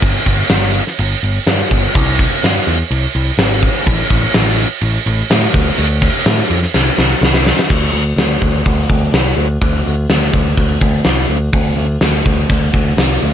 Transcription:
0.02 G1, kick, crash
0.26 G1, kick, crash
0.50 G1, snare, crash
0.74 crash
0.87 snare
0.99 G1, crash
1.23 G1, crash
1.47 G2, snare, crash
1.71 G1, kick, crash
1.95 C2, kick, crash
2.19 kick, crash
2.44 G2, snare, crash
2.67 E2, crash
2.91 C2, crash
3.15 C2, crash
3.38 G#1, snare, crash
3.62 kick, crash
3.86 A1, kick, crash
4.10 A1, kick, crash
4.34 A1, snare, crash
4.58 crash
4.81 A1, crash
5.06 A1, crash
5.30 A2, snare, crash
5.54 D2, kick, crash
5.78 D2, crash
6.02 kick, crash
6.26 A2, snare, crash
6.50 F2, crash
6.63 snare
6.74 C2, snare
6.98 C2, snare
7.21 C2, snare
7.34 snare
7.46 snare
7.59 snare
7.70 D2, kick, crash
7.92 D2
8.16 D2, snare, open hi-hat
8.42 D2, kick
8.66 D2, kick, open hi-hat
8.90 D2, kick
9.12 C2, snare, open hi-hat
9.37 D2
9.61 D2, kick, open hi-hat
9.86 D2
10.09 D2, snare, open hi-hat
10.33 D2, kick
10.57 D2, kick, open hi-hat
10.81 D2, kick
11.05 C2, snare, open hi-hat
11.28 D2
11.53 D2, kick, open hi-hat
11.76 D2
12.01 D2, snare, open hi-hat
12.26 D2, kick
12.49 D2, kick, open hi-hat
12.73 D2, kick
12.97 C2, snare, open hi-hat
13.22 D2

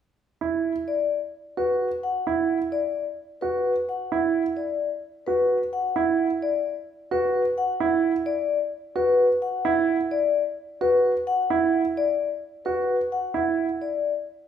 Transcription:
0.41 E4
0.88 D5
1.57 F#4 B4
2.03 F#5
2.27 E4
2.72 D5
3.41 F#4 B4
3.89 F#5
4.12 E4
4.57 D5
5.26 F#4 B4
5.73 F#5
5.96 E4
6.42 D5
7.11 F#4 B4
7.58 F#5
7.80 E4
8.26 D5
8.96 F#4 B4
9.42 F#5
9.65 E4
10.11 D5
10.81 F#4 B4
11.27 F#5
11.50 E4
11.97 D5
12.65 F#4 B4
13.12 F#5
13.34 E4
13.82 D5

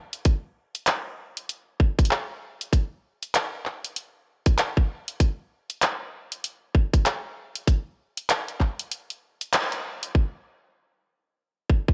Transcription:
0.13 closed hi-hat
0.25 kick, closed hi-hat
0.75 closed hi-hat
0.87 clap, closed hi-hat
1.37 closed hi-hat
1.49 closed hi-hat
1.80 kick
1.99 kick, closed hi-hat
2.05 closed hi-hat
2.11 clap
2.61 closed hi-hat
2.73 kick, closed hi-hat
3.23 closed hi-hat
3.35 clap, closed hi-hat
3.66 clap
3.84 closed hi-hat
3.96 closed hi-hat
4.46 kick, closed hi-hat
4.58 clap, closed hi-hat
4.77 kick
5.08 closed hi-hat
5.20 kick, closed hi-hat
5.70 closed hi-hat
5.82 clap, closed hi-hat
6.32 closed hi-hat
6.44 closed hi-hat
6.75 kick
6.93 kick, closed hi-hat
7.06 clap, closed hi-hat
7.55 closed hi-hat
7.67 kick, closed hi-hat
8.17 closed hi-hat
8.30 clap, closed hi-hat
8.48 closed hi-hat
8.60 kick, clap
8.79 closed hi-hat
8.91 closed hi-hat
9.10 closed hi-hat
9.41 closed hi-hat
9.53 clap, closed hi-hat
9.72 closed hi-hat
10.03 closed hi-hat
10.15 kick
11.70 kick
11.88 kick

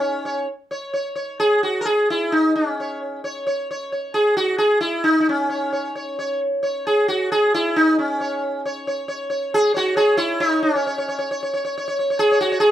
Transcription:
Already playing: C#4
0.00 C#5
0.25 C#5
0.71 C#5
0.93 C#5
1.16 C#5
1.40 G#4
1.63 F#4
1.81 A#4
1.85 G#4
2.10 E4
2.32 D#4
2.56 C#4
2.80 C#5
3.24 C#5
3.47 C#5
3.71 C#5
3.92 C#5
4.14 G#4
4.37 F#4
4.58 G#4
4.81 E4
5.04 D#4
5.20 D#4
5.29 C#4
5.49 C#5
5.73 C#5
5.95 C#5
6.19 C#5
6.63 C#5
6.87 G#4
7.08 F#4
7.32 G#4
7.54 E4
7.76 D#4
7.99 C#4
8.20 C#5
8.65 C#5
8.87 C#5
9.08 C#5
9.30 C#5
9.54 G#4
9.74 F#4 C#5
9.96 G#4 C#5
10.17 E4 C#5
10.40 D#4 C#5
10.63 C#4
10.75 C#5
10.87 C#5
10.98 C#5
11.08 C#5
11.19 C#5
11.31 C#5
11.43 C#5
11.54 C#5
11.65 C#5
11.78 C#5
11.88 C#5
11.99 C#5
12.10 C#5
12.19 G#4
12.32 C#5
12.41 F#4
12.52 C#5
12.60 G#4

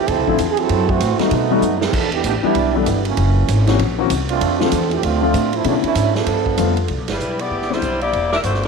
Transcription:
0.08 D2 F3 C4 E4 A4, kick, ride
0.18 C2
0.27 A1 D3 F3 A3 C4 E4, kick
0.38 E2, kick, hi-hat pedal, ride
0.50 G#4
0.57 F#3 C4 E4 A4, ride
0.69 F#2, kick, ride
0.89 E3 A3 C4 F#4, kick
1.00 A2, kick, hi-hat pedal, ride
1.19 D#3 F#3 G3 A3 B3 D#4 F#4, muted upright bass stroke, snare, ride
1.31 B2, kick, ride
1.50 D#3 G3 A3 B3 F#4
1.61 F#2, hi-hat pedal
1.77 E4
1.81 D#3 A3 B3 G4, snare
1.93 E2 F3 B3 D4 A4, kick, crash
2.12 E3 B3 D4 G4, ride
2.24 A1 E3 B3 D4 G4, kick, hi-hat pedal, ride
2.43 E3 G3 B3 D4 E4 G4, muted upright bass stroke
2.55 B1, kick, ride
2.74 D3 E3 G3 B3 D4 A4
2.86 G1, kick, hi-hat pedal, ride
3.05 E3 F#3 A#3 C#4, ride
3.17 F#1, kick, ride
3.48 G#1, kick, hi-hat pedal, ride
3.67 E3 A#3 C4 C#4 F#4, snare, ride
3.79 A#1, kick, ride
3.98 E3 A#3 C4 C#4 F#4
4.10 C2, kick, hi-hat pedal, ride
4.29 A3 C4 D4 F4, ride
4.41 F2, kick, ride
4.59 D3 F3 A3 C4 D4 F4 A4, snare
4.72 E2, kick, hi-hat pedal, ride
4.91 E3 A3 C4 G4, ride
5.02 D2 A3 C4 D4 F4, kick, ride
5.21 D3 F3 A3 C4 F4
5.34 A2, kick, hi-hat pedal, ride
5.53 F3 A3 C4 E4, ride
5.64 B2 C#3 D3 F#3 A3 B3 C#4 D4 E4, kick, ride
5.83 A3 C#4 D4 E4, muted upright bass stroke, ride
5.95 G#2, kick, hi-hat pedal, ride
6.15 F3 B3 D4 A4, snare
6.26 G2, kick, ride
6.46 kick
6.57 F2 D3 G3 A3 B3 F4, kick, hi-hat pedal, ride
6.77 ride
6.88 C2, kick, ride
6.98 B1
7.08 G1 G3 D4 E4 B4, snare, ride
7.19 B1, hi-hat pedal
7.39 B3 E4 G4 D5, ride
7.51 G1, kick
7.62 snare
7.70 D3 G3 B3 C4 D4 E4 C5, snare
7.82 B1, kick, hi-hat pedal, ride
8.01 A#3 E4 G4 D5, ride
8.13 E1, kick, ride
8.32 D4 G4 A#4 E5, snare
8.44 G1 A3 D4 F#4 C5, kick, hi-hat pedal, ride
8.55 snare
8.63 D4, ride

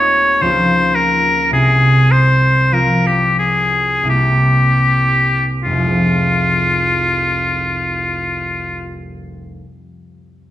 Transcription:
Already playing: D#1 D#2 A3 C4 F4 C#5
0.40 C#2 C#3 F3 C5
0.45 A#3 F4
0.95 A#4
1.51 C2 C3 G#4
2.11 C5
2.72 F3 C4 F4 A#4
3.07 G4
3.39 G#4
4.03 C2 C3 G3 E4
4.09 A#3 G4
5.63 F1 F4
5.71 C2
5.77 F3
5.84 G#3
5.90 C4
5.97 F4

